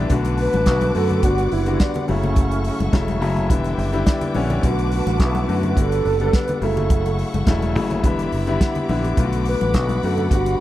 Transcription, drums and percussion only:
0.10 kick, closed hi-hat, muted conga
0.25 closed hi-hat, muted conga
0.38 open hi-hat
0.53 closed hi-hat, high conga
0.66 kick, snare, closed hi-hat
0.81 closed hi-hat, high conga
0.95 open hi-hat
1.09 closed hi-hat, low conga
1.23 kick, closed hi-hat, muted conga
1.38 closed hi-hat, muted conga
1.52 open hi-hat
1.66 closed hi-hat
1.80 kick, snare, closed hi-hat, muted conga
1.94 closed hi-hat, low conga
2.08 open hi-hat, high conga
2.23 closed hi-hat, low conga
2.36 kick, closed hi-hat
2.51 closed hi-hat
2.64 open hi-hat
2.80 closed hi-hat, high conga
2.93 kick, snare, closed hi-hat
3.08 closed hi-hat, muted conga, high conga
3.22 open hi-hat
3.36 closed hi-hat, low conga
3.50 kick, closed hi-hat, muted conga
3.64 closed hi-hat, muted conga
3.79 open hi-hat
3.93 closed hi-hat
4.06 kick, snare, closed hi-hat, muted conga
4.21 closed hi-hat, low conga
4.35 open hi-hat, high conga
4.50 closed hi-hat, low conga
4.63 kick, closed hi-hat
4.79 closed hi-hat
4.92 open hi-hat
5.07 closed hi-hat, high conga
5.20 kick, snare, closed hi-hat, muted conga
5.35 closed hi-hat, high conga
5.49 open hi-hat
5.63 closed hi-hat, low conga
5.77 kick, closed hi-hat
5.92 closed hi-hat
6.05 open hi-hat
6.20 closed hi-hat
6.33 kick, snare, closed hi-hat, muted conga
6.48 closed hi-hat, low conga
6.62 open hi-hat, high conga
6.77 closed hi-hat, low conga
6.90 kick, closed hi-hat, muted conga
7.06 closed hi-hat, muted conga
7.19 open hi-hat
7.34 closed hi-hat, high conga
7.47 kick, snare, closed hi-hat, muted conga
7.62 closed hi-hat, high conga
7.76 open hi-hat
7.90 closed hi-hat, low conga
8.04 kick, closed hi-hat
8.19 closed hi-hat
8.32 open hi-hat
8.47 closed hi-hat
8.61 kick, snare, closed hi-hat
8.75 closed hi-hat, low conga
8.89 open hi-hat, high conga
9.04 closed hi-hat, low conga
9.17 kick, closed hi-hat, muted conga
9.33 closed hi-hat, muted conga
9.45 open hi-hat
9.61 closed hi-hat, high conga
9.74 kick, snare, closed hi-hat
9.89 closed hi-hat, muted conga, high conga
10.03 open hi-hat
10.17 closed hi-hat, low conga
10.31 kick, closed hi-hat
10.46 closed hi-hat, muted conga

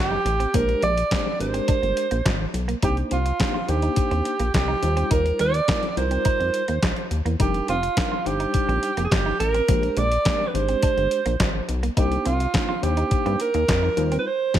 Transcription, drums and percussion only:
0.26 closed hi-hat
0.40 closed hi-hat
0.54 kick, closed hi-hat
0.69 closed hi-hat
0.82 closed hi-hat
0.98 closed hi-hat
1.11 kick, snare, clap, closed hi-hat
1.40 closed hi-hat
1.54 closed hi-hat
1.68 kick, closed hi-hat
1.83 closed hi-hat
1.97 closed hi-hat
2.11 closed hi-hat
2.26 kick, snare, clap, closed hi-hat
2.54 closed hi-hat
2.69 closed hi-hat
2.82 kick, closed hi-hat
2.97 closed hi-hat
3.11 closed hi-hat
3.26 closed hi-hat
3.40 kick, snare, clap, closed hi-hat
3.69 closed hi-hat
3.82 closed hi-hat
3.96 kick, closed hi-hat
4.11 closed hi-hat
4.25 closed hi-hat
4.40 closed hi-hat
4.54 kick, snare, clap, closed hi-hat
4.83 closed hi-hat
4.97 closed hi-hat
5.11 kick, closed hi-hat
5.26 closed hi-hat
5.39 closed hi-hat
5.54 closed hi-hat
5.68 kick, snare, clap, closed hi-hat
5.83 closed hi-hat
5.97 closed hi-hat
6.11 closed hi-hat
6.25 kick, closed hi-hat
6.41 closed hi-hat
6.54 closed hi-hat
6.68 closed hi-hat
6.83 kick, snare, clap, closed hi-hat
6.96 closed hi-hat
7.11 closed hi-hat
7.26 closed hi-hat
7.40 kick, closed hi-hat
7.54 closed hi-hat
7.68 closed hi-hat
7.83 closed hi-hat
7.97 kick, snare, clap, closed hi-hat
8.26 closed hi-hat
8.40 closed hi-hat
8.54 kick, closed hi-hat
8.69 closed hi-hat
8.83 closed hi-hat
8.97 closed hi-hat
9.11 kick, snare, clap, closed hi-hat
9.40 closed hi-hat
9.54 closed hi-hat
9.68 kick, closed hi-hat
9.83 closed hi-hat
9.97 closed hi-hat
10.12 closed hi-hat
10.25 kick, snare, clap, closed hi-hat
10.55 closed hi-hat
10.68 closed hi-hat
10.83 kick, closed hi-hat
10.98 closed hi-hat
11.11 closed hi-hat
11.26 closed hi-hat
11.40 kick, snare, clap, closed hi-hat
11.69 closed hi-hat
11.83 closed hi-hat
11.97 kick, closed hi-hat
12.12 closed hi-hat
12.26 closed hi-hat
12.40 closed hi-hat
12.54 kick, snare, clap, closed hi-hat
12.83 closed hi-hat
12.97 closed hi-hat
13.11 kick, closed hi-hat
13.26 closed hi-hat
13.40 closed hi-hat
13.54 closed hi-hat
13.68 kick, snare, clap, closed hi-hat
13.97 closed hi-hat
14.12 closed hi-hat
14.54 kick, snare, crash

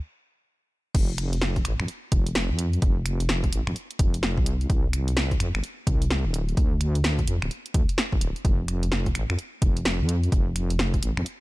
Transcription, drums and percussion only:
0.95 kick, closed hi-hat, crash
1.18 finger snap, closed hi-hat
1.33 closed hi-hat
1.42 snare
1.56 kick, closed hi-hat
1.65 finger snap, closed hi-hat
1.80 finger snap
1.88 closed hi-hat
2.12 kick, closed hi-hat
2.27 closed hi-hat
2.35 snare
2.59 closed hi-hat
2.73 closed hi-hat
2.82 kick, closed hi-hat
3.06 finger snap, closed hi-hat
3.20 closed hi-hat
3.29 snare
3.44 kick, closed hi-hat
3.53 closed hi-hat
3.67 finger snap
3.76 closed hi-hat
3.91 closed hi-hat
3.99 kick, closed hi-hat
4.14 closed hi-hat
4.23 snare
4.37 kick
4.46 closed hi-hat
4.61 closed hi-hat
4.70 kick, closed hi-hat
4.93 finger snap, closed hi-hat
5.08 closed hi-hat
5.17 snare
5.31 kick, closed hi-hat
5.40 finger snap, closed hi-hat
5.55 finger snap
5.64 closed hi-hat
5.87 kick, closed hi-hat
6.02 closed hi-hat
6.11 snare
6.34 closed hi-hat
6.49 closed hi-hat
6.57 kick, closed hi-hat
6.81 finger snap, closed hi-hat
6.95 closed hi-hat
7.04 snare
7.19 kick, closed hi-hat
7.28 closed hi-hat
7.42 finger snap
7.51 closed hi-hat
7.66 closed hi-hat
7.74 kick, closed hi-hat
7.89 closed hi-hat
7.98 snare
8.12 kick
8.21 closed hi-hat
8.36 closed hi-hat
8.45 kick, closed hi-hat
8.68 finger snap, closed hi-hat
8.83 closed hi-hat
8.92 snare
9.06 kick, closed hi-hat
9.15 finger snap, closed hi-hat
9.30 finger snap
9.39 closed hi-hat
9.62 kick, closed hi-hat
9.77 closed hi-hat
9.85 snare
10.09 closed hi-hat
10.23 closed hi-hat
10.32 kick, closed hi-hat
10.56 finger snap, closed hi-hat
10.70 closed hi-hat
10.79 snare
10.94 kick, closed hi-hat
11.03 closed hi-hat
11.17 finger snap
11.26 closed hi-hat

